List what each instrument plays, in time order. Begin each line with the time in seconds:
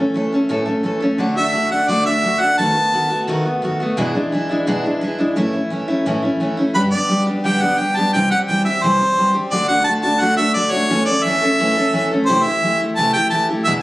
Already playing: steel-string acoustic guitar A4
0.00 steel-string acoustic guitar A3 C#4
0.14 steel-string acoustic guitar E3 A3 C#4 A4
0.32 steel-string acoustic guitar A3 C#4 A4
0.49 steel-string acoustic guitar A2 E3 A3 C#4 A4
0.66 steel-string acoustic guitar A3 C#4 A4
0.83 steel-string acoustic guitar E3 A3 C#4 A4
1.00 steel-string acoustic guitar A3 C#4 A4
1.18 steel-string acoustic guitar D3 A3 D4 F#4
1.36 steel-string acoustic guitar A3 D4 F#4, harmonica E5
1.53 steel-string acoustic guitar D3 A3 D4 F#4
1.70 steel-string acoustic guitar A3 D4 F#4, harmonica F#5
1.88 steel-string acoustic guitar D3 A3 D4 F#4, harmonica D5
2.06 steel-string acoustic guitar A3 D4 F#4, harmonica E5
2.23 steel-string acoustic guitar D3 A3 D4 F#4
2.40 steel-string acoustic guitar A3 D4 F#4, harmonica F#5
2.58 steel-string acoustic guitar B2 D#3 A3 B3 F#4, harmonica A5
2.75 steel-string acoustic guitar A3 B3 F#4
2.92 steel-string acoustic guitar D#3 A3 B3 F#4
3.10 steel-string acoustic guitar A3 B3 F#4
3.27 steel-string acoustic guitar B2 D#3 A3 B3 F#4
3.45 steel-string acoustic guitar A3 B3 F#4
3.62 steel-string acoustic guitar D#3 A3 B3 F#4
3.80 steel-string acoustic guitar A3 B3 F#4
3.97 steel-string acoustic guitar E2 B2 E3 G#3 D4 E4
4.15 steel-string acoustic guitar E3 G#3 D4 E4
4.32 steel-string acoustic guitar E3 G#3 D4 E4
4.49 steel-string acoustic guitar E3 G#3 D4 E4
4.67 steel-string acoustic guitar E2 B2 E3 G#3 D4 E4
4.84 steel-string acoustic guitar E3 G#3 D4 E4
5.01 steel-string acoustic guitar E3 G#3 D4 E4
5.19 steel-string acoustic guitar E3 G#3 D4 E4
5.36 steel-string acoustic guitar A2 E3 A3 C#4 E4
5.53 steel-string acoustic guitar A3 C#4 E4
5.70 steel-string acoustic guitar E3 A3 C#4 E4
5.88 steel-string acoustic guitar A3 C#4 E4
6.06 steel-string acoustic guitar A2 E3 A3 C#4 E4
6.22 steel-string acoustic guitar A3 C#4 E4
6.40 steel-string acoustic guitar E3 A3 C#4 E4
6.57 steel-string acoustic guitar A3 C#4 E4
6.75 steel-string acoustic guitar G2 D3 G3 B3 D4 G4, harmonica B4
6.91 steel-string acoustic guitar G3 B3 D4 G4, harmonica D5
7.09 steel-string acoustic guitar G3 B3 D4 G4
7.27 steel-string acoustic guitar G3 B3 D4 G4
7.44 steel-string acoustic guitar G2 D3 G3 B3 D4 G4, harmonica G5
7.62 steel-string acoustic guitar G3 B3 D4 G4, harmonica F#5
7.78 steel-string acoustic guitar G3 B3 D4 G4, harmonica G5
7.96 steel-string acoustic guitar G3 B3 D4 G4, harmonica A5
8.13 steel-string acoustic guitar C3 E3 G3 C4 G4, harmonica G5
8.31 steel-string acoustic guitar G3 C4 G4, harmonica F#5
8.47 steel-string acoustic guitar E3 G3 C4 G4, harmonica G5
8.65 steel-string acoustic guitar G3 C4 G4, harmonica E5
8.83 steel-string acoustic guitar C3 E3 G3 C4 G4, harmonica C5
9.00 steel-string acoustic guitar G3 C4 G4
9.17 steel-string acoustic guitar E3 G3 C4 G4
9.34 steel-string acoustic guitar G3 C4 G4
9.51 steel-string acoustic guitar D3 A3 D4 F#4, harmonica D5
9.68 steel-string acoustic guitar A3 D4 F#4, harmonica F#5
9.84 steel-string acoustic guitar D3 A3 D4, harmonica A5
9.89 steel-string acoustic guitar F#4
10.02 steel-string acoustic guitar A3 D4 F#4, harmonica A5
10.20 steel-string acoustic guitar D3 A3 D4 F#4, harmonica F#5
10.37 steel-string acoustic guitar A3 D4 F#4, harmonica E5
10.54 steel-string acoustic guitar D3 A3 D4 F#4, harmonica D5
10.71 steel-string acoustic guitar D4 F#4, harmonica C#5
10.75 steel-string acoustic guitar A3
10.89 steel-string acoustic guitar A2 E3 A3 C#4 A4
11.05 steel-string acoustic guitar C#4 A4, harmonica D5
11.10 steel-string acoustic guitar A3
11.23 steel-string acoustic guitar E3 A3 C#4, harmonica E5
11.28 steel-string acoustic guitar A4
11.41 steel-string acoustic guitar A3 C#4 A4
11.59 steel-string acoustic guitar A2 E3 A3 C#4 A4
11.76 steel-string acoustic guitar A3 C#4 A4
11.93 steel-string acoustic guitar E3 A3 C#4 A4
12.11 steel-string acoustic guitar A3 C#4 A4
12.26 steel-string acoustic guitar C3 E3 A3 E4 G4, harmonica C5
12.44 steel-string acoustic guitar E4 G4, harmonica E5
12.48 steel-string acoustic guitar A3
12.62 steel-string acoustic guitar E3 A3 E4 G4
12.80 steel-string acoustic guitar A3 E4 G4
12.96 steel-string acoustic guitar C3 E3 A3 E4 G4, harmonica A5
13.13 steel-string acoustic guitar E4 G4, harmonica G5
13.18 steel-string acoustic guitar A3
13.30 steel-string acoustic guitar E3 A3 E4 G4, harmonica A5
13.49 steel-string acoustic guitar A3 E4 G4
13.65 steel-string acoustic guitar E2 B2 E3 G#3 D4 E4, harmonica E5